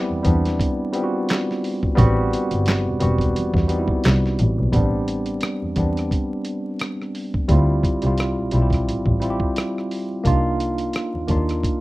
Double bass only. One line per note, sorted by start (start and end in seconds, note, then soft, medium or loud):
0.09 0.21 E2 soft
0.25 0.55 E2 medium
1.98 2.27 A1 loud
2.52 2.64 G1 medium
2.86 2.97 E1 medium
3.02 3.31 E1 medium
3.36 3.50 E2 soft
3.54 3.84 E2 medium
4.05 4.21 C2 medium
4.39 4.56 A1 medium
4.58 4.71 B1 medium
4.74 5.33 A1 medium
5.62 5.73 E2 soft
5.77 6.06 E2 medium
7.49 7.79 D2 loud
8.03 8.16 C2 medium
8.38 8.49 B1 soft
8.53 8.82 B1 medium
8.87 9.01 A1 soft
9.06 9.36 A1 medium
10.26 10.85 C2 medium
11.14 11.25 D#2 soft
11.29 11.58 D#2 medium